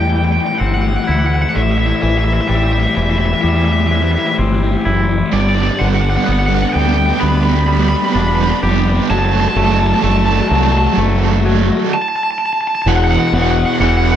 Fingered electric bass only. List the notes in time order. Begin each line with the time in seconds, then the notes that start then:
Already playing: E2
0.61 G1
1.09 D2
1.56 A1
2.03 A1
2.50 A1
2.97 E1
3.44 E2
4.39 G1
4.86 F#1
5.33 G1
5.81 G1
6.28 G1
6.75 D2
7.23 D2
8.15 E1
8.63 F1
9.11 F#1
9.56 F#1
10.03 F#1
10.51 C2
10.97 F#1
12.86 E1
13.33 E1
13.80 E1